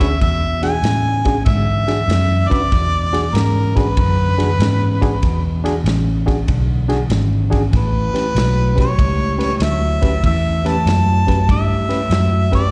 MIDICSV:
0, 0, Header, 1, 7, 480
1, 0, Start_track
1, 0, Tempo, 626305
1, 160, Time_signature, 4, 2, 24, 8
1, 9742, End_track
2, 0, Start_track
2, 0, Title_t, "Harmonica"
2, 0, Program_c, 0, 22
2, 0, Note_on_c, 0, 76, 93
2, 148, Note_off_c, 0, 76, 0
2, 164, Note_on_c, 0, 76, 100
2, 461, Note_off_c, 0, 76, 0
2, 485, Note_on_c, 0, 80, 114
2, 1092, Note_off_c, 0, 80, 0
2, 1115, Note_on_c, 0, 76, 105
2, 1906, Note_on_c, 0, 74, 109
2, 1917, Note_off_c, 0, 76, 0
2, 2565, Note_on_c, 0, 70, 86
2, 2577, Note_off_c, 0, 74, 0
2, 2886, Note_on_c, 0, 71, 85
2, 2898, Note_off_c, 0, 70, 0
2, 4324, Note_off_c, 0, 71, 0
2, 5954, Note_on_c, 0, 71, 96
2, 6707, Note_off_c, 0, 71, 0
2, 6746, Note_on_c, 0, 73, 94
2, 7341, Note_off_c, 0, 73, 0
2, 7380, Note_on_c, 0, 76, 103
2, 7819, Note_off_c, 0, 76, 0
2, 7855, Note_on_c, 0, 76, 103
2, 8182, Note_on_c, 0, 81, 108
2, 8194, Note_off_c, 0, 76, 0
2, 8809, Note_off_c, 0, 81, 0
2, 8825, Note_on_c, 0, 76, 96
2, 9580, Note_off_c, 0, 76, 0
2, 9618, Note_on_c, 0, 74, 105
2, 9742, Note_off_c, 0, 74, 0
2, 9742, End_track
3, 0, Start_track
3, 0, Title_t, "Reed electric piano"
3, 0, Program_c, 1, 4
3, 3, Note_on_c, 1, 62, 66
3, 4, Note_on_c, 1, 66, 60
3, 8, Note_on_c, 1, 68, 70
3, 82, Note_off_c, 1, 62, 0
3, 82, Note_off_c, 1, 66, 0
3, 84, Note_off_c, 1, 68, 0
3, 477, Note_on_c, 1, 62, 65
3, 482, Note_on_c, 1, 66, 59
3, 488, Note_on_c, 1, 68, 75
3, 559, Note_off_c, 1, 62, 0
3, 561, Note_off_c, 1, 66, 0
3, 564, Note_off_c, 1, 68, 0
3, 957, Note_on_c, 1, 62, 67
3, 962, Note_on_c, 1, 66, 62
3, 963, Note_on_c, 1, 68, 77
3, 1039, Note_off_c, 1, 62, 0
3, 1041, Note_off_c, 1, 66, 0
3, 1042, Note_off_c, 1, 68, 0
3, 1435, Note_on_c, 1, 62, 64
3, 1440, Note_on_c, 1, 66, 61
3, 1440, Note_on_c, 1, 68, 66
3, 1518, Note_off_c, 1, 62, 0
3, 1520, Note_off_c, 1, 66, 0
3, 1521, Note_off_c, 1, 68, 0
3, 1912, Note_on_c, 1, 62, 68
3, 1916, Note_on_c, 1, 66, 59
3, 1920, Note_on_c, 1, 71, 74
3, 1997, Note_off_c, 1, 62, 0
3, 1999, Note_off_c, 1, 66, 0
3, 2000, Note_off_c, 1, 71, 0
3, 2398, Note_on_c, 1, 62, 70
3, 2400, Note_on_c, 1, 66, 69
3, 2404, Note_on_c, 1, 68, 76
3, 2479, Note_off_c, 1, 62, 0
3, 2481, Note_off_c, 1, 66, 0
3, 2482, Note_off_c, 1, 68, 0
3, 2877, Note_on_c, 1, 62, 66
3, 2881, Note_on_c, 1, 66, 63
3, 2885, Note_on_c, 1, 68, 73
3, 2959, Note_off_c, 1, 62, 0
3, 2961, Note_off_c, 1, 66, 0
3, 2963, Note_off_c, 1, 68, 0
3, 3356, Note_on_c, 1, 62, 68
3, 3360, Note_on_c, 1, 66, 64
3, 3360, Note_on_c, 1, 68, 69
3, 3438, Note_off_c, 1, 62, 0
3, 3440, Note_off_c, 1, 68, 0
3, 3441, Note_off_c, 1, 66, 0
3, 3842, Note_on_c, 1, 62, 77
3, 3845, Note_on_c, 1, 66, 73
3, 3850, Note_on_c, 1, 68, 87
3, 3921, Note_off_c, 1, 62, 0
3, 3923, Note_off_c, 1, 66, 0
3, 3925, Note_off_c, 1, 68, 0
3, 4322, Note_on_c, 1, 62, 86
3, 4326, Note_on_c, 1, 66, 68
3, 4329, Note_on_c, 1, 68, 91
3, 4402, Note_off_c, 1, 62, 0
3, 4403, Note_off_c, 1, 66, 0
3, 4405, Note_off_c, 1, 68, 0
3, 4798, Note_on_c, 1, 62, 79
3, 4803, Note_on_c, 1, 66, 73
3, 4803, Note_on_c, 1, 68, 84
3, 4879, Note_off_c, 1, 62, 0
3, 4882, Note_off_c, 1, 66, 0
3, 4882, Note_off_c, 1, 68, 0
3, 5276, Note_on_c, 1, 62, 74
3, 5278, Note_on_c, 1, 66, 71
3, 5281, Note_on_c, 1, 68, 89
3, 5358, Note_off_c, 1, 62, 0
3, 5359, Note_off_c, 1, 66, 0
3, 5361, Note_off_c, 1, 68, 0
3, 5749, Note_on_c, 1, 62, 81
3, 5755, Note_on_c, 1, 66, 68
3, 5757, Note_on_c, 1, 68, 87
3, 5834, Note_off_c, 1, 62, 0
3, 5837, Note_off_c, 1, 66, 0
3, 5839, Note_off_c, 1, 68, 0
3, 6237, Note_on_c, 1, 61, 65
3, 6239, Note_on_c, 1, 67, 57
3, 6244, Note_on_c, 1, 71, 75
3, 6318, Note_off_c, 1, 61, 0
3, 6319, Note_off_c, 1, 67, 0
3, 6322, Note_off_c, 1, 71, 0
3, 6705, Note_on_c, 1, 61, 62
3, 6710, Note_on_c, 1, 67, 60
3, 6714, Note_on_c, 1, 71, 75
3, 6792, Note_off_c, 1, 61, 0
3, 6795, Note_off_c, 1, 67, 0
3, 6797, Note_off_c, 1, 71, 0
3, 7189, Note_on_c, 1, 61, 66
3, 7192, Note_on_c, 1, 67, 54
3, 7195, Note_on_c, 1, 71, 75
3, 7274, Note_off_c, 1, 61, 0
3, 7276, Note_off_c, 1, 67, 0
3, 7277, Note_off_c, 1, 71, 0
3, 7676, Note_on_c, 1, 61, 67
3, 7677, Note_on_c, 1, 67, 59
3, 7680, Note_on_c, 1, 71, 72
3, 7757, Note_off_c, 1, 61, 0
3, 7758, Note_off_c, 1, 67, 0
3, 7759, Note_off_c, 1, 71, 0
3, 8160, Note_on_c, 1, 61, 68
3, 8162, Note_on_c, 1, 67, 67
3, 8168, Note_on_c, 1, 71, 75
3, 8239, Note_off_c, 1, 61, 0
3, 8240, Note_off_c, 1, 67, 0
3, 8243, Note_off_c, 1, 71, 0
3, 8638, Note_on_c, 1, 61, 65
3, 8642, Note_on_c, 1, 67, 57
3, 8646, Note_on_c, 1, 71, 71
3, 8718, Note_off_c, 1, 61, 0
3, 8720, Note_off_c, 1, 67, 0
3, 8722, Note_off_c, 1, 71, 0
3, 9109, Note_on_c, 1, 61, 69
3, 9114, Note_on_c, 1, 67, 58
3, 9116, Note_on_c, 1, 71, 74
3, 9193, Note_off_c, 1, 61, 0
3, 9195, Note_off_c, 1, 67, 0
3, 9197, Note_off_c, 1, 71, 0
3, 9593, Note_on_c, 1, 61, 64
3, 9596, Note_on_c, 1, 67, 66
3, 9599, Note_on_c, 1, 71, 72
3, 9675, Note_off_c, 1, 61, 0
3, 9676, Note_off_c, 1, 67, 0
3, 9677, Note_off_c, 1, 71, 0
3, 9742, End_track
4, 0, Start_track
4, 0, Title_t, "Clean electric guitar"
4, 0, Program_c, 2, 27
4, 0, Note_on_c, 2, 40, 73
4, 0, Note_on_c, 2, 49, 75
4, 142, Note_off_c, 2, 40, 0
4, 143, Note_off_c, 2, 49, 0
4, 154, Note_on_c, 2, 40, 74
4, 161, Note_on_c, 2, 47, 94
4, 446, Note_off_c, 2, 40, 0
4, 449, Note_off_c, 2, 47, 0
4, 479, Note_on_c, 2, 40, 72
4, 483, Note_on_c, 2, 47, 79
4, 623, Note_off_c, 2, 40, 0
4, 626, Note_off_c, 2, 47, 0
4, 641, Note_on_c, 2, 40, 68
4, 649, Note_on_c, 2, 49, 77
4, 930, Note_off_c, 2, 40, 0
4, 933, Note_off_c, 2, 49, 0
4, 956, Note_on_c, 2, 40, 64
4, 957, Note_on_c, 2, 49, 86
4, 1102, Note_off_c, 2, 40, 0
4, 1103, Note_off_c, 2, 49, 0
4, 1110, Note_on_c, 2, 40, 79
4, 1117, Note_on_c, 2, 50, 90
4, 1404, Note_off_c, 2, 40, 0
4, 1408, Note_off_c, 2, 50, 0
4, 1437, Note_on_c, 2, 40, 73
4, 1439, Note_on_c, 2, 50, 77
4, 1582, Note_off_c, 2, 40, 0
4, 1583, Note_off_c, 2, 50, 0
4, 1594, Note_on_c, 2, 40, 77
4, 1594, Note_on_c, 2, 49, 84
4, 1886, Note_off_c, 2, 40, 0
4, 1886, Note_off_c, 2, 49, 0
4, 1914, Note_on_c, 2, 40, 77
4, 1920, Note_on_c, 2, 49, 71
4, 2061, Note_off_c, 2, 40, 0
4, 2064, Note_off_c, 2, 49, 0
4, 2082, Note_on_c, 2, 40, 75
4, 2087, Note_on_c, 2, 47, 86
4, 2370, Note_off_c, 2, 40, 0
4, 2373, Note_off_c, 2, 47, 0
4, 2397, Note_on_c, 2, 40, 73
4, 2404, Note_on_c, 2, 47, 72
4, 2543, Note_off_c, 2, 40, 0
4, 2546, Note_off_c, 2, 47, 0
4, 2561, Note_on_c, 2, 40, 71
4, 2568, Note_on_c, 2, 49, 88
4, 2850, Note_off_c, 2, 40, 0
4, 2853, Note_off_c, 2, 49, 0
4, 2894, Note_on_c, 2, 40, 70
4, 2894, Note_on_c, 2, 49, 80
4, 3031, Note_off_c, 2, 40, 0
4, 3031, Note_off_c, 2, 49, 0
4, 3044, Note_on_c, 2, 40, 80
4, 3048, Note_on_c, 2, 50, 99
4, 3331, Note_off_c, 2, 40, 0
4, 3333, Note_off_c, 2, 50, 0
4, 3370, Note_on_c, 2, 40, 70
4, 3376, Note_on_c, 2, 50, 79
4, 3509, Note_off_c, 2, 40, 0
4, 3512, Note_off_c, 2, 50, 0
4, 3533, Note_on_c, 2, 40, 79
4, 3540, Note_on_c, 2, 49, 88
4, 3816, Note_off_c, 2, 40, 0
4, 3819, Note_off_c, 2, 49, 0
4, 3855, Note_on_c, 2, 40, 68
4, 3858, Note_on_c, 2, 49, 86
4, 3992, Note_off_c, 2, 40, 0
4, 3993, Note_off_c, 2, 49, 0
4, 4021, Note_on_c, 2, 40, 73
4, 4023, Note_on_c, 2, 47, 87
4, 4300, Note_off_c, 2, 40, 0
4, 4301, Note_off_c, 2, 47, 0
4, 4333, Note_on_c, 2, 40, 70
4, 4337, Note_on_c, 2, 47, 87
4, 4471, Note_off_c, 2, 40, 0
4, 4473, Note_off_c, 2, 47, 0
4, 4489, Note_on_c, 2, 40, 70
4, 4491, Note_on_c, 2, 49, 90
4, 4774, Note_off_c, 2, 40, 0
4, 4775, Note_off_c, 2, 49, 0
4, 4810, Note_on_c, 2, 40, 66
4, 4813, Note_on_c, 2, 49, 73
4, 4949, Note_off_c, 2, 40, 0
4, 4951, Note_off_c, 2, 49, 0
4, 4962, Note_on_c, 2, 40, 84
4, 4967, Note_on_c, 2, 50, 93
4, 5250, Note_off_c, 2, 40, 0
4, 5253, Note_off_c, 2, 50, 0
4, 5284, Note_on_c, 2, 40, 67
4, 5291, Note_on_c, 2, 50, 82
4, 5426, Note_off_c, 2, 40, 0
4, 5429, Note_off_c, 2, 50, 0
4, 5440, Note_on_c, 2, 40, 75
4, 5442, Note_on_c, 2, 49, 85
4, 5729, Note_off_c, 2, 40, 0
4, 5730, Note_off_c, 2, 49, 0
4, 5762, Note_on_c, 2, 40, 69
4, 5766, Note_on_c, 2, 49, 71
4, 5904, Note_off_c, 2, 40, 0
4, 5907, Note_off_c, 2, 49, 0
4, 5916, Note_on_c, 2, 45, 69
4, 5924, Note_on_c, 2, 52, 83
4, 6207, Note_off_c, 2, 45, 0
4, 6211, Note_off_c, 2, 52, 0
4, 6240, Note_on_c, 2, 45, 70
4, 6249, Note_on_c, 2, 52, 77
4, 6383, Note_off_c, 2, 45, 0
4, 6388, Note_off_c, 2, 52, 0
4, 6401, Note_on_c, 2, 45, 72
4, 6405, Note_on_c, 2, 54, 78
4, 6689, Note_off_c, 2, 45, 0
4, 6691, Note_off_c, 2, 54, 0
4, 6727, Note_on_c, 2, 45, 69
4, 6731, Note_on_c, 2, 54, 85
4, 6867, Note_off_c, 2, 45, 0
4, 6869, Note_off_c, 2, 54, 0
4, 6886, Note_on_c, 2, 45, 80
4, 6889, Note_on_c, 2, 55, 82
4, 7171, Note_off_c, 2, 45, 0
4, 7173, Note_off_c, 2, 55, 0
4, 7202, Note_on_c, 2, 45, 74
4, 7208, Note_on_c, 2, 55, 80
4, 7344, Note_off_c, 2, 45, 0
4, 7347, Note_off_c, 2, 55, 0
4, 7363, Note_on_c, 2, 45, 76
4, 7368, Note_on_c, 2, 54, 88
4, 7650, Note_off_c, 2, 45, 0
4, 7652, Note_off_c, 2, 54, 0
4, 7682, Note_on_c, 2, 45, 74
4, 7685, Note_on_c, 2, 54, 78
4, 7824, Note_off_c, 2, 45, 0
4, 7825, Note_off_c, 2, 54, 0
4, 7836, Note_on_c, 2, 45, 65
4, 7841, Note_on_c, 2, 52, 85
4, 8126, Note_off_c, 2, 45, 0
4, 8129, Note_off_c, 2, 52, 0
4, 8159, Note_on_c, 2, 52, 82
4, 8160, Note_on_c, 2, 45, 73
4, 8302, Note_off_c, 2, 52, 0
4, 8303, Note_off_c, 2, 45, 0
4, 8313, Note_on_c, 2, 45, 72
4, 8322, Note_on_c, 2, 54, 78
4, 8604, Note_off_c, 2, 45, 0
4, 8609, Note_off_c, 2, 54, 0
4, 8644, Note_on_c, 2, 45, 76
4, 8646, Note_on_c, 2, 54, 74
4, 8784, Note_off_c, 2, 45, 0
4, 8785, Note_off_c, 2, 54, 0
4, 8798, Note_on_c, 2, 45, 81
4, 8804, Note_on_c, 2, 55, 98
4, 9086, Note_off_c, 2, 45, 0
4, 9089, Note_off_c, 2, 55, 0
4, 9123, Note_on_c, 2, 45, 82
4, 9125, Note_on_c, 2, 55, 73
4, 9263, Note_off_c, 2, 45, 0
4, 9264, Note_off_c, 2, 55, 0
4, 9276, Note_on_c, 2, 45, 74
4, 9282, Note_on_c, 2, 54, 83
4, 9565, Note_off_c, 2, 45, 0
4, 9568, Note_off_c, 2, 54, 0
4, 9601, Note_on_c, 2, 45, 69
4, 9607, Note_on_c, 2, 54, 74
4, 9742, Note_off_c, 2, 45, 0
4, 9742, Note_off_c, 2, 54, 0
4, 9742, End_track
5, 0, Start_track
5, 0, Title_t, "Fingered electric bass"
5, 0, Program_c, 3, 33
5, 0, Note_on_c, 3, 38, 86
5, 143, Note_off_c, 3, 38, 0
5, 162, Note_on_c, 3, 40, 80
5, 627, Note_off_c, 3, 40, 0
5, 632, Note_on_c, 3, 45, 83
5, 1102, Note_off_c, 3, 45, 0
5, 1117, Note_on_c, 3, 44, 77
5, 1584, Note_off_c, 3, 44, 0
5, 1591, Note_on_c, 3, 42, 94
5, 1894, Note_off_c, 3, 42, 0
5, 2085, Note_on_c, 3, 40, 84
5, 2549, Note_off_c, 3, 40, 0
5, 2556, Note_on_c, 3, 44, 90
5, 3024, Note_off_c, 3, 44, 0
5, 3042, Note_on_c, 3, 42, 76
5, 3507, Note_off_c, 3, 42, 0
5, 3517, Note_on_c, 3, 44, 82
5, 3984, Note_off_c, 3, 44, 0
5, 4009, Note_on_c, 3, 40, 81
5, 4470, Note_off_c, 3, 40, 0
5, 4476, Note_on_c, 3, 33, 97
5, 4944, Note_off_c, 3, 33, 0
5, 4967, Note_on_c, 3, 35, 77
5, 5429, Note_off_c, 3, 35, 0
5, 5439, Note_on_c, 3, 32, 88
5, 5905, Note_off_c, 3, 32, 0
5, 5922, Note_on_c, 3, 33, 74
5, 6219, Note_off_c, 3, 33, 0
5, 6399, Note_on_c, 3, 35, 86
5, 6865, Note_off_c, 3, 35, 0
5, 6882, Note_on_c, 3, 37, 85
5, 7346, Note_off_c, 3, 37, 0
5, 7355, Note_on_c, 3, 38, 86
5, 7822, Note_off_c, 3, 38, 0
5, 7843, Note_on_c, 3, 40, 79
5, 8306, Note_off_c, 3, 40, 0
5, 8320, Note_on_c, 3, 42, 90
5, 8784, Note_off_c, 3, 42, 0
5, 8802, Note_on_c, 3, 43, 81
5, 9265, Note_off_c, 3, 43, 0
5, 9271, Note_on_c, 3, 42, 86
5, 9739, Note_off_c, 3, 42, 0
5, 9742, End_track
6, 0, Start_track
6, 0, Title_t, "Muted fingered electric bass strokes"
6, 6233, Note_on_c, 9, 29, 39
6, 6310, Note_off_c, 9, 29, 0
6, 9742, End_track
7, 0, Start_track
7, 0, Title_t, "Drums"
7, 6, Note_on_c, 9, 36, 73
7, 6, Note_on_c, 9, 51, 67
7, 18, Note_on_c, 9, 38, 34
7, 82, Note_off_c, 9, 51, 0
7, 83, Note_off_c, 9, 36, 0
7, 95, Note_off_c, 9, 38, 0
7, 164, Note_on_c, 9, 36, 90
7, 164, Note_on_c, 9, 51, 76
7, 176, Note_on_c, 9, 38, 29
7, 241, Note_off_c, 9, 36, 0
7, 241, Note_off_c, 9, 51, 0
7, 253, Note_off_c, 9, 38, 0
7, 481, Note_on_c, 9, 51, 57
7, 493, Note_on_c, 9, 38, 30
7, 557, Note_off_c, 9, 51, 0
7, 570, Note_off_c, 9, 38, 0
7, 640, Note_on_c, 9, 51, 77
7, 653, Note_on_c, 9, 38, 99
7, 717, Note_off_c, 9, 51, 0
7, 729, Note_off_c, 9, 38, 0
7, 959, Note_on_c, 9, 51, 56
7, 964, Note_on_c, 9, 36, 76
7, 972, Note_on_c, 9, 38, 32
7, 1036, Note_off_c, 9, 51, 0
7, 1040, Note_off_c, 9, 36, 0
7, 1048, Note_off_c, 9, 38, 0
7, 1118, Note_on_c, 9, 51, 76
7, 1123, Note_on_c, 9, 36, 95
7, 1131, Note_on_c, 9, 38, 33
7, 1195, Note_off_c, 9, 51, 0
7, 1199, Note_off_c, 9, 36, 0
7, 1207, Note_off_c, 9, 38, 0
7, 1442, Note_on_c, 9, 51, 52
7, 1455, Note_on_c, 9, 38, 31
7, 1519, Note_off_c, 9, 51, 0
7, 1531, Note_off_c, 9, 38, 0
7, 1606, Note_on_c, 9, 51, 84
7, 1618, Note_on_c, 9, 38, 108
7, 1683, Note_off_c, 9, 51, 0
7, 1695, Note_off_c, 9, 38, 0
7, 1927, Note_on_c, 9, 36, 85
7, 1930, Note_on_c, 9, 51, 62
7, 1942, Note_on_c, 9, 38, 34
7, 2004, Note_off_c, 9, 36, 0
7, 2007, Note_off_c, 9, 51, 0
7, 2019, Note_off_c, 9, 38, 0
7, 2084, Note_on_c, 9, 51, 73
7, 2086, Note_on_c, 9, 36, 104
7, 2096, Note_on_c, 9, 38, 27
7, 2161, Note_off_c, 9, 51, 0
7, 2163, Note_off_c, 9, 36, 0
7, 2173, Note_off_c, 9, 38, 0
7, 2409, Note_on_c, 9, 51, 63
7, 2421, Note_on_c, 9, 38, 35
7, 2485, Note_off_c, 9, 51, 0
7, 2498, Note_off_c, 9, 38, 0
7, 2567, Note_on_c, 9, 51, 77
7, 2579, Note_on_c, 9, 38, 99
7, 2643, Note_off_c, 9, 51, 0
7, 2656, Note_off_c, 9, 38, 0
7, 2887, Note_on_c, 9, 36, 80
7, 2887, Note_on_c, 9, 51, 62
7, 2900, Note_on_c, 9, 38, 34
7, 2964, Note_off_c, 9, 36, 0
7, 2964, Note_off_c, 9, 51, 0
7, 2976, Note_off_c, 9, 38, 0
7, 3042, Note_on_c, 9, 51, 86
7, 3045, Note_on_c, 9, 36, 105
7, 3119, Note_off_c, 9, 51, 0
7, 3122, Note_off_c, 9, 36, 0
7, 3370, Note_on_c, 9, 51, 59
7, 3382, Note_on_c, 9, 38, 31
7, 3447, Note_off_c, 9, 51, 0
7, 3459, Note_off_c, 9, 38, 0
7, 3528, Note_on_c, 9, 51, 84
7, 3540, Note_on_c, 9, 38, 101
7, 3604, Note_off_c, 9, 51, 0
7, 3617, Note_off_c, 9, 38, 0
7, 3849, Note_on_c, 9, 36, 78
7, 3852, Note_on_c, 9, 51, 66
7, 3864, Note_on_c, 9, 38, 33
7, 3926, Note_off_c, 9, 36, 0
7, 3928, Note_off_c, 9, 51, 0
7, 3941, Note_off_c, 9, 38, 0
7, 4005, Note_on_c, 9, 51, 75
7, 4009, Note_on_c, 9, 36, 96
7, 4017, Note_on_c, 9, 38, 27
7, 4082, Note_off_c, 9, 51, 0
7, 4085, Note_off_c, 9, 36, 0
7, 4094, Note_off_c, 9, 38, 0
7, 4335, Note_on_c, 9, 51, 62
7, 4347, Note_on_c, 9, 38, 32
7, 4411, Note_off_c, 9, 51, 0
7, 4424, Note_off_c, 9, 38, 0
7, 4491, Note_on_c, 9, 51, 78
7, 4504, Note_on_c, 9, 38, 100
7, 4568, Note_off_c, 9, 51, 0
7, 4580, Note_off_c, 9, 38, 0
7, 4812, Note_on_c, 9, 36, 79
7, 4814, Note_on_c, 9, 51, 56
7, 4826, Note_on_c, 9, 38, 33
7, 4889, Note_off_c, 9, 36, 0
7, 4890, Note_off_c, 9, 51, 0
7, 4903, Note_off_c, 9, 38, 0
7, 4967, Note_on_c, 9, 51, 79
7, 4970, Note_on_c, 9, 36, 103
7, 5044, Note_off_c, 9, 51, 0
7, 5046, Note_off_c, 9, 36, 0
7, 5285, Note_on_c, 9, 51, 55
7, 5297, Note_on_c, 9, 38, 33
7, 5362, Note_off_c, 9, 51, 0
7, 5374, Note_off_c, 9, 38, 0
7, 5441, Note_on_c, 9, 51, 75
7, 5453, Note_on_c, 9, 38, 112
7, 5518, Note_off_c, 9, 51, 0
7, 5530, Note_off_c, 9, 38, 0
7, 5766, Note_on_c, 9, 51, 60
7, 5768, Note_on_c, 9, 36, 75
7, 5778, Note_on_c, 9, 38, 34
7, 5843, Note_off_c, 9, 51, 0
7, 5845, Note_off_c, 9, 36, 0
7, 5855, Note_off_c, 9, 38, 0
7, 5925, Note_on_c, 9, 51, 72
7, 5927, Note_on_c, 9, 36, 97
7, 5937, Note_on_c, 9, 38, 28
7, 6001, Note_off_c, 9, 51, 0
7, 6004, Note_off_c, 9, 36, 0
7, 6014, Note_off_c, 9, 38, 0
7, 6251, Note_on_c, 9, 51, 58
7, 6263, Note_on_c, 9, 38, 34
7, 6328, Note_off_c, 9, 51, 0
7, 6340, Note_off_c, 9, 38, 0
7, 6410, Note_on_c, 9, 51, 83
7, 6422, Note_on_c, 9, 38, 104
7, 6487, Note_off_c, 9, 51, 0
7, 6499, Note_off_c, 9, 38, 0
7, 6727, Note_on_c, 9, 51, 61
7, 6728, Note_on_c, 9, 36, 76
7, 6739, Note_on_c, 9, 38, 31
7, 6804, Note_off_c, 9, 51, 0
7, 6805, Note_off_c, 9, 36, 0
7, 6816, Note_off_c, 9, 38, 0
7, 6888, Note_on_c, 9, 36, 108
7, 6888, Note_on_c, 9, 51, 82
7, 6964, Note_off_c, 9, 51, 0
7, 6965, Note_off_c, 9, 36, 0
7, 7208, Note_on_c, 9, 51, 61
7, 7220, Note_on_c, 9, 38, 34
7, 7284, Note_off_c, 9, 51, 0
7, 7297, Note_off_c, 9, 38, 0
7, 7359, Note_on_c, 9, 51, 88
7, 7371, Note_on_c, 9, 38, 108
7, 7436, Note_off_c, 9, 51, 0
7, 7448, Note_off_c, 9, 38, 0
7, 7682, Note_on_c, 9, 51, 65
7, 7685, Note_on_c, 9, 36, 85
7, 7694, Note_on_c, 9, 38, 36
7, 7759, Note_off_c, 9, 51, 0
7, 7762, Note_off_c, 9, 36, 0
7, 7771, Note_off_c, 9, 38, 0
7, 7845, Note_on_c, 9, 51, 80
7, 7846, Note_on_c, 9, 36, 96
7, 7922, Note_off_c, 9, 51, 0
7, 7923, Note_off_c, 9, 36, 0
7, 8169, Note_on_c, 9, 51, 57
7, 8181, Note_on_c, 9, 38, 34
7, 8246, Note_off_c, 9, 51, 0
7, 8258, Note_off_c, 9, 38, 0
7, 8331, Note_on_c, 9, 51, 75
7, 8344, Note_on_c, 9, 38, 105
7, 8408, Note_off_c, 9, 51, 0
7, 8420, Note_off_c, 9, 38, 0
7, 8647, Note_on_c, 9, 36, 75
7, 8648, Note_on_c, 9, 51, 57
7, 8661, Note_on_c, 9, 38, 35
7, 8724, Note_off_c, 9, 36, 0
7, 8725, Note_off_c, 9, 51, 0
7, 8737, Note_off_c, 9, 38, 0
7, 8806, Note_on_c, 9, 36, 108
7, 8808, Note_on_c, 9, 51, 76
7, 8821, Note_on_c, 9, 38, 30
7, 8883, Note_off_c, 9, 36, 0
7, 8885, Note_off_c, 9, 51, 0
7, 8897, Note_off_c, 9, 38, 0
7, 9123, Note_on_c, 9, 51, 54
7, 9135, Note_on_c, 9, 38, 30
7, 9200, Note_off_c, 9, 51, 0
7, 9212, Note_off_c, 9, 38, 0
7, 9280, Note_on_c, 9, 51, 81
7, 9293, Note_on_c, 9, 38, 110
7, 9357, Note_off_c, 9, 51, 0
7, 9369, Note_off_c, 9, 38, 0
7, 9604, Note_on_c, 9, 36, 74
7, 9604, Note_on_c, 9, 51, 62
7, 9616, Note_on_c, 9, 38, 38
7, 9681, Note_off_c, 9, 36, 0
7, 9681, Note_off_c, 9, 51, 0
7, 9693, Note_off_c, 9, 38, 0
7, 9742, End_track
0, 0, End_of_file